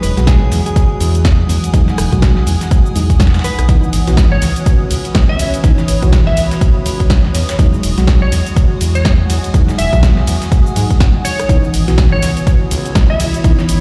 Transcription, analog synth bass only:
0.03 E1
0.17 B1
0.42 B1
0.52 E2
1.00 E2
1.49 E2
1.74 E2
1.98 E1
2.12 B1
2.37 B1
2.47 E2
2.95 E2
3.59 B1
3.69 C#2
3.93 G#1
4.07 B1
4.32 G#1
4.42 C#2
4.91 C#2
5.39 C#2
5.64 C#2
5.88 G#1
6.03 B1
6.27 G#1
6.37 C#2
6.86 C#2
7.34 E2
7.59 E2
7.83 E1
7.98 B1
8.22 B1
8.32 E2
8.81 E2
9.30 E2
9.54 E2
9.79 E1
9.93 B1
10.17 B1
10.27 E2
10.76 G#2
11.49 C#2
11.74 G#1
11.88 B1
12.12 G#1
12.22 C#2
12.71 C#2
13.20 C#2
13.44 C#2
13.69 G#1

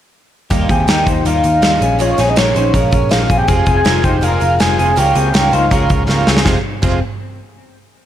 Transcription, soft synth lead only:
0.70 G5
1.27 F5
2.01 C#5
2.30 D#5
2.37 C#5
3.11 F5
3.38 G5
3.48 G#5
3.77 G#5
4.04 G5
4.24 F5
4.60 G#5
4.78 G#5
4.98 G5
5.53 F5

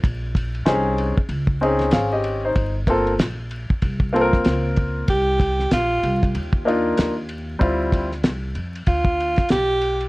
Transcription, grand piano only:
0.65 C4 C#4 D#4 G#4
1.61 C4 C#4 D#4 G#4
1.93 G#4 F5
2.13 G4 D#5
2.45 D#4 C5
2.87 A#3 C4 F4 A4
4.13 A#3 C4 F4 A4
4.21 A#4
6.65 A#3 D4 D#4 F4
7.59 G3 C4 E4 F4

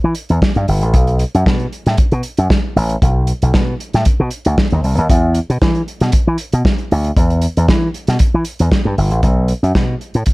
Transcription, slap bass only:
0.04 E3
0.30 E2
0.56 G2
0.68 G1
0.83 A1
0.94 B1
1.35 F#2
1.47 B2
1.86 A2
1.99 muted slap bass stroke
2.12 B2
2.38 F#2
2.76 A1
3.02 B1
3.42 B1
3.55 B2
3.94 A2
4.06 muted slap bass stroke
4.20 B2
4.46 D2
4.72 D#2
4.84 C2
4.98 D#2
5.10 E2
5.50 B2
5.62 E3
6.01 B2
6.27 E3
6.53 B2
6.92 D2
7.17 E2
7.57 E2
7.69 E3
8.08 B2
8.34 E3
8.60 E2
8.85 G2
8.98 G1
9.11 A1
9.23 B1
9.63 F#2
9.75 B2
10.15 A2
10.27 muted slap bass stroke

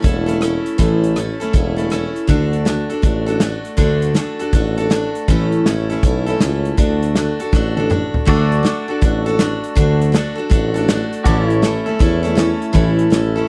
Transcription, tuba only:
0.04 E1
0.79 A1
1.54 E1
2.29 D2
3.04 A1
3.78 D2
4.53 A1
5.28 A1
5.65 A1
6.03 B1
6.40 C#2
6.78 D2
7.53 A1
8.28 D2
9.02 A1
9.77 D2
10.51 A1
11.26 A1
12.00 E2
12.75 A1
13.11 A1

